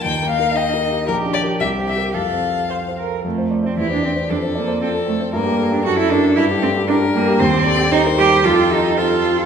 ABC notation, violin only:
X:1
M:2/4
L:1/8
Q:1/4=115
K:Eblyd
V:1 name="Violin"
g f e2 | [K:F] B d e e | f3 z | z2 G2 |
A2 A2 | B2 A2 | G2 B2 | [K:Cdor] c d c2 |
A2 A2 |]